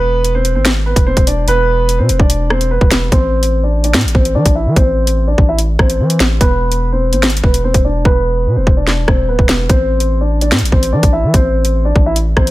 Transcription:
0.00 0.57 E1 loud
0.00 0.32 B3 loud
0.00 0.31 B4 loud
0.24 closed hi-hat medium
0.35 0.53 C4 medium
0.35 0.53 C5 medium
0.45 closed hi-hat medium
0.55 0.94 G#1 loud
0.55 0.65 C4 medium
0.55 0.64 C5 medium
0.65 snare loud
0.65 closed hi-hat medium
0.86 1.04 B3 medium
0.86 1.04 B4 medium
0.96 1.16 E1 loud
0.96 kick loud
0.96 closed hi-hat medium
1.07 1.25 C4 medium
1.07 1.24 C5 medium
1.17 1.46 E1 loud
1.17 kick medium
1.17 closed hi-hat medium
1.27 1.45 D4 medium
1.27 1.45 D5 medium
1.27 closed hi-hat medium
1.48 2.01 E1 loud
1.48 1.97 B3 medium
1.48 1.96 B4 loud
1.48 closed hi-hat medium
1.89 closed hi-hat medium
1.99 2.11 B2 loud
1.99 2.17 C4 medium
1.99 2.17 C5 medium
2.09 2.19 E1 loud
2.09 closed hi-hat medium
2.19 2.79 E1 loud
2.19 2.49 D4 medium
2.19 2.48 D5 medium
2.19 kick loud
2.30 closed hi-hat medium
2.50 2.69 C4 medium
2.50 2.68 C5 medium
2.50 cross-stick loud
2.61 closed hi-hat medium
2.71 3.10 B3 medium
2.71 3.10 B4 medium
2.81 2.91 E1 loud
2.81 kick medium
2.91 3.11 E1 loud
2.91 snare loud
2.91 closed hi-hat medium
3.12 3.96 A1 loud
3.12 3.61 C4 medium
3.12 3.60 C5 loud
3.12 kick loud
3.12 closed hi-hat medium
3.43 closed hi-hat medium
3.63 3.82 D4 medium
3.63 3.81 D5 medium
3.84 3.93 D4 medium
3.84 3.93 D5 medium
3.84 closed hi-hat medium
3.94 4.06 A2 loud
3.94 snare loud
3.94 closed hi-hat soft
4.01 4.14 A1 loud
4.01 closed hi-hat medium
4.08 closed hi-hat medium
4.14 4.37 A1 loud
4.14 4.33 C4 medium
4.14 4.32 C5 medium
4.14 kick medium
4.25 closed hi-hat medium
4.35 4.45 E3 loud
4.35 4.53 D4 medium
4.35 4.53 D5 loud
4.46 4.68 A1 loud
4.46 kick medium
4.46 closed hi-hat medium
4.55 4.74 E4 medium
4.55 4.73 E5 medium
4.66 4.76 E3 loud
4.76 5.36 A1 loud
4.76 5.26 C4 medium
4.76 5.25 C5 loud
4.76 kick loud
4.76 closed hi-hat medium
5.07 closed hi-hat medium
5.28 5.46 D4 medium
5.28 5.45 D5 medium
5.38 5.78 A1 loud
5.38 kick loud
5.49 5.58 E4 medium
5.49 5.57 E5 medium
5.59 closed hi-hat medium
5.79 6.01 A1 loud
5.79 6.38 C4 medium
5.79 6.37 C5 medium
5.79 kick medium
5.79 cross-stick loud
5.90 closed hi-hat medium
6.00 6.19 E3 loud
6.10 closed hi-hat medium
6.20 6.40 A1 loud
6.20 snare loud
6.20 closed hi-hat medium
6.41 7.14 E1 loud
6.41 6.89 B3 medium
6.41 6.89 B4 loud
6.41 kick loud
6.41 closed hi-hat medium
6.72 closed hi-hat medium
6.92 7.11 C4 medium
6.92 7.10 C5 medium
7.13 7.42 G#1 loud
7.13 7.22 C4 medium
7.13 7.22 C5 medium
7.13 closed hi-hat medium
7.23 snare loud
7.23 closed hi-hat soft
7.30 closed hi-hat medium
7.37 closed hi-hat medium
7.43 7.73 E1 loud
7.43 7.62 B3 medium
7.43 7.61 B4 medium
7.43 kick medium
7.54 closed hi-hat medium
7.64 7.82 C4 medium
7.64 7.82 C5 medium
7.74 8.04 E1 loud
7.74 kick medium
7.74 closed hi-hat medium
7.85 8.03 D4 medium
7.85 8.02 D5 medium
8.05 8.48 E1 loud
8.05 8.54 B3 medium
8.05 8.54 B4 loud
8.05 kick loud
8.46 8.58 B2 loud
8.56 8.66 E1 loud
8.56 8.75 C4 medium
8.56 8.74 C5 medium
8.67 9.06 E1 loud
8.67 kick loud
8.77 9.06 D4 medium
8.77 9.06 D5 medium
8.87 snare medium
9.08 9.30 E1 loud
9.08 9.26 C4 medium
9.08 9.26 C5 medium
9.08 kick medium
9.08 cross-stick loud
9.28 9.38 D1 loud
9.28 9.68 B3 medium
9.28 9.67 B4 medium
9.39 9.48 E1 medium
9.39 kick medium
9.49 9.69 E1 loud
9.49 snare loud
9.70 10.53 A1 loud
9.70 10.18 C4 medium
9.70 10.18 C5 loud
9.70 kick loud
9.70 closed hi-hat medium
10.00 closed hi-hat medium
10.21 10.39 D4 medium
10.21 10.39 D5 medium
10.41 10.51 D4 medium
10.41 10.51 D5 medium
10.41 closed hi-hat medium
10.52 10.64 A2 loud
10.52 snare loud
10.52 closed hi-hat soft
10.59 10.72 A1 loud
10.59 closed hi-hat medium
10.65 closed hi-hat medium
10.72 10.94 A1 loud
10.72 10.90 C4 medium
10.72 10.90 C5 medium
10.72 kick medium
10.83 closed hi-hat medium
10.93 11.03 E3 loud
10.93 11.11 D4 medium
10.93 11.11 D5 medium
11.03 11.25 A1 loud
11.03 kick medium
11.03 closed hi-hat medium
11.13 11.31 E4 medium
11.13 11.31 E5 medium
11.24 11.33 E3 loud
11.34 11.93 A1 loud
11.34 11.83 C4 medium
11.34 11.83 C5 loud
11.34 kick loud
11.34 closed hi-hat medium
11.65 closed hi-hat medium
11.85 12.03 D4 medium
11.85 12.03 D5 medium
11.96 12.35 A1 loud
11.96 kick loud
12.06 12.15 E4 medium
12.06 12.15 E5 medium
12.16 closed hi-hat medium
12.37 12.51 A1 loud
12.37 12.51 C4 medium
12.37 12.51 C5 medium
12.37 kick medium
12.37 cross-stick loud
12.47 closed hi-hat medium

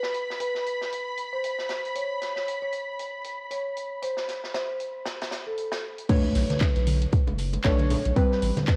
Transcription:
0.00 0.17 B4 medium
0.00 6.11 B5 medium
0.00 snare medium
0.14 closed hi-hat medium
0.30 snare soft
0.40 0.62 B4 medium
0.40 closed hi-hat medium
0.55 snare soft
0.66 closed hi-hat medium
0.81 snare soft
0.92 closed hi-hat medium
1.17 closed hi-hat medium
1.33 1.45 C5 medium
1.44 closed hi-hat medium
1.59 snare soft
1.69 snare medium
1.69 closed hi-hat medium
1.85 closed hi-hat soft
1.95 2.17 C#5 medium
1.95 closed hi-hat medium
2.22 snare soft
2.22 closed hi-hat medium
2.36 2.49 C#5 medium
2.36 snare soft
2.48 closed hi-hat medium
2.62 2.90 C#5 medium
2.72 closed hi-hat medium
2.99 closed hi-hat medium
3.24 closed hi-hat medium
3.51 3.79 C#5 medium
3.51 closed hi-hat medium
3.77 closed hi-hat medium
4.02 4.31 C5 medium
4.02 closed hi-hat medium
4.17 snare soft
4.28 snare soft
4.28 closed hi-hat medium
4.44 snare soft
4.54 4.76 C5 medium
4.54 snare loud
4.54 closed hi-hat medium
4.80 closed hi-hat medium
5.05 snare loud
5.05 closed hi-hat medium
5.21 snare loud
5.21 closed hi-hat medium
5.31 snare medium
5.31 closed hi-hat medium
5.47 5.59 A4 medium
5.58 closed hi-hat medium
5.72 snare loud
5.72 closed hi-hat medium
5.98 closed hi-hat medium
6.09 7.62 A3 medium
6.09 7.62 D4 medium
6.09 6.31 B4 loud
6.09 7.62 C#5 medium
6.09 kick loud
6.09 closed hi-hat loud
6.09 closed hi-hat medium
6.09 crash loud
6.09 impact medium
6.24 high bongo medium
6.35 6.44 B1 loud
6.35 snare soft
6.35 closed hi-hat medium
6.35 open hi-hat loud
6.50 6.62 B4 medium
6.50 snare soft
6.50 closed hi-hat medium
6.50 high conga medium
6.61 kick loud
6.61 snare loud
6.61 clap loud
6.61 closed hi-hat medium
6.61 high bongo medium
6.76 7.06 B1 medium
6.76 7.04 B4 medium
6.76 closed hi-hat soft
6.87 closed hi-hat medium
6.87 open hi-hat loud
6.87 high bongo medium
6.87 high conga medium
7.02 closed hi-hat medium
7.12 kick loud
7.12 closed hi-hat medium
7.12 low conga medium
7.27 7.58 F#1 medium
7.27 closed hi-hat soft
7.27 high bongo medium
7.38 closed hi-hat medium
7.38 open hi-hat loud
7.53 closed hi-hat medium
7.53 high bongo medium
7.64 7.96 B1 medium
7.64 8.14 A3 medium
7.64 8.14 D4 medium
7.64 7.93 B4 medium
7.64 8.14 C#5 loud
7.64 kick loud
7.64 snare loud
7.64 clap loud
7.64 closed hi-hat medium
7.79 closed hi-hat soft
7.79 high conga medium
7.90 closed hi-hat medium
7.90 open hi-hat loud
7.90 high bongo medium
7.90 low conga loud
8.05 8.12 B1 medium
8.05 closed hi-hat medium
8.16 8.76 G3 medium
8.16 8.76 C4 medium
8.16 8.45 B4 medium
8.16 8.76 B4 medium
8.16 kick loud
8.16 closed hi-hat medium
8.16 high bongo medium
8.32 snare medium
8.42 8.51 A1 loud
8.42 closed hi-hat medium
8.42 open hi-hat loud
8.57 snare soft
8.57 closed hi-hat medium
8.57 high bongo medium
8.57 high conga loud
8.57 low conga medium
8.67 8.76 B4 medium
8.67 kick loud
8.67 snare loud
8.67 clap loud
8.67 closed hi-hat medium

